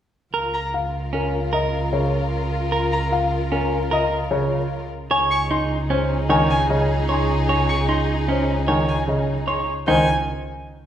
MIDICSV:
0, 0, Header, 1, 7, 480
1, 0, Start_track
1, 0, Key_signature, -5, "major"
1, 0, Tempo, 397351
1, 416, Time_signature, 6, 2, 24, 8
1, 13121, End_track
2, 0, Start_track
2, 0, Title_t, "Violin"
2, 0, Program_c, 0, 40
2, 648, Note_on_c, 0, 82, 49
2, 831, Note_off_c, 0, 82, 0
2, 3531, Note_on_c, 0, 82, 59
2, 3712, Note_off_c, 0, 82, 0
2, 6413, Note_on_c, 0, 85, 65
2, 6594, Note_off_c, 0, 85, 0
2, 7854, Note_on_c, 0, 80, 68
2, 8035, Note_off_c, 0, 80, 0
2, 9292, Note_on_c, 0, 85, 56
2, 9473, Note_off_c, 0, 85, 0
2, 10731, Note_on_c, 0, 80, 52
2, 10912, Note_off_c, 0, 80, 0
2, 11931, Note_on_c, 0, 80, 80
2, 12156, Note_off_c, 0, 80, 0
2, 13121, End_track
3, 0, Start_track
3, 0, Title_t, "Grand piano"
3, 0, Program_c, 1, 0
3, 895, Note_on_c, 1, 77, 51
3, 1207, Note_off_c, 1, 77, 0
3, 1380, Note_on_c, 1, 70, 53
3, 1689, Note_off_c, 1, 70, 0
3, 1856, Note_on_c, 1, 75, 69
3, 2168, Note_off_c, 1, 75, 0
3, 2328, Note_on_c, 1, 73, 56
3, 2645, Note_off_c, 1, 73, 0
3, 3773, Note_on_c, 1, 77, 65
3, 4087, Note_off_c, 1, 77, 0
3, 4254, Note_on_c, 1, 70, 62
3, 4567, Note_off_c, 1, 70, 0
3, 4746, Note_on_c, 1, 75, 87
3, 5051, Note_off_c, 1, 75, 0
3, 5207, Note_on_c, 1, 73, 67
3, 5524, Note_off_c, 1, 73, 0
3, 6170, Note_on_c, 1, 80, 79
3, 6485, Note_off_c, 1, 80, 0
3, 6659, Note_on_c, 1, 84, 65
3, 6968, Note_off_c, 1, 84, 0
3, 7132, Note_on_c, 1, 72, 65
3, 7446, Note_off_c, 1, 72, 0
3, 7621, Note_on_c, 1, 80, 83
3, 7929, Note_off_c, 1, 80, 0
3, 8095, Note_on_c, 1, 75, 61
3, 8407, Note_off_c, 1, 75, 0
3, 8576, Note_on_c, 1, 84, 56
3, 8888, Note_off_c, 1, 84, 0
3, 9046, Note_on_c, 1, 80, 62
3, 9364, Note_off_c, 1, 80, 0
3, 9529, Note_on_c, 1, 84, 56
3, 9845, Note_off_c, 1, 84, 0
3, 10004, Note_on_c, 1, 72, 54
3, 10323, Note_off_c, 1, 72, 0
3, 10478, Note_on_c, 1, 80, 66
3, 10801, Note_off_c, 1, 80, 0
3, 10979, Note_on_c, 1, 75, 52
3, 11288, Note_off_c, 1, 75, 0
3, 11443, Note_on_c, 1, 84, 51
3, 11763, Note_off_c, 1, 84, 0
3, 11923, Note_on_c, 1, 72, 75
3, 12152, Note_off_c, 1, 72, 0
3, 13121, End_track
4, 0, Start_track
4, 0, Title_t, "Clean electric guitar"
4, 0, Program_c, 2, 27
4, 408, Note_on_c, 2, 70, 65
4, 725, Note_off_c, 2, 70, 0
4, 1363, Note_on_c, 2, 61, 51
4, 1683, Note_off_c, 2, 61, 0
4, 1845, Note_on_c, 2, 70, 64
4, 2164, Note_off_c, 2, 70, 0
4, 3287, Note_on_c, 2, 70, 72
4, 3604, Note_off_c, 2, 70, 0
4, 4250, Note_on_c, 2, 61, 59
4, 4565, Note_off_c, 2, 61, 0
4, 4728, Note_on_c, 2, 70, 77
4, 5045, Note_off_c, 2, 70, 0
4, 6173, Note_on_c, 2, 73, 88
4, 6487, Note_off_c, 2, 73, 0
4, 6651, Note_on_c, 2, 63, 64
4, 6966, Note_off_c, 2, 63, 0
4, 7129, Note_on_c, 2, 61, 67
4, 7445, Note_off_c, 2, 61, 0
4, 7610, Note_on_c, 2, 73, 78
4, 7926, Note_off_c, 2, 73, 0
4, 8564, Note_on_c, 2, 73, 58
4, 8884, Note_off_c, 2, 73, 0
4, 9051, Note_on_c, 2, 73, 68
4, 9366, Note_off_c, 2, 73, 0
4, 9527, Note_on_c, 2, 63, 50
4, 9845, Note_off_c, 2, 63, 0
4, 10008, Note_on_c, 2, 61, 52
4, 10325, Note_off_c, 2, 61, 0
4, 10486, Note_on_c, 2, 73, 64
4, 10804, Note_off_c, 2, 73, 0
4, 11448, Note_on_c, 2, 73, 51
4, 11765, Note_off_c, 2, 73, 0
4, 11933, Note_on_c, 2, 63, 79
4, 12157, Note_off_c, 2, 63, 0
4, 13121, End_track
5, 0, Start_track
5, 0, Title_t, "Violin section"
5, 0, Program_c, 3, 48
5, 414, Note_on_c, 3, 65, 59
5, 414, Note_on_c, 3, 70, 57
5, 5886, Note_off_c, 3, 65, 0
5, 5886, Note_off_c, 3, 70, 0
5, 6178, Note_on_c, 3, 63, 73
5, 6179, Note_on_c, 3, 68, 74
5, 11648, Note_off_c, 3, 63, 0
5, 11649, Note_off_c, 3, 68, 0
5, 13121, End_track
6, 0, Start_track
6, 0, Title_t, "Grand piano"
6, 0, Program_c, 4, 0
6, 2327, Note_on_c, 4, 49, 51
6, 2644, Note_off_c, 4, 49, 0
6, 5203, Note_on_c, 4, 49, 64
6, 5523, Note_off_c, 4, 49, 0
6, 7133, Note_on_c, 4, 61, 65
6, 7447, Note_off_c, 4, 61, 0
6, 7603, Note_on_c, 4, 51, 77
6, 7923, Note_off_c, 4, 51, 0
6, 8092, Note_on_c, 4, 49, 60
6, 8406, Note_off_c, 4, 49, 0
6, 10016, Note_on_c, 4, 61, 51
6, 10327, Note_off_c, 4, 61, 0
6, 10491, Note_on_c, 4, 51, 63
6, 10806, Note_off_c, 4, 51, 0
6, 10963, Note_on_c, 4, 49, 53
6, 11283, Note_off_c, 4, 49, 0
6, 11935, Note_on_c, 4, 51, 79
6, 12158, Note_off_c, 4, 51, 0
6, 13121, End_track
7, 0, Start_track
7, 0, Title_t, "Double bass"
7, 0, Program_c, 5, 43
7, 414, Note_on_c, 5, 37, 54
7, 6030, Note_off_c, 5, 37, 0
7, 6179, Note_on_c, 5, 37, 69
7, 11793, Note_off_c, 5, 37, 0
7, 11939, Note_on_c, 5, 37, 62
7, 12160, Note_off_c, 5, 37, 0
7, 13121, End_track
0, 0, End_of_file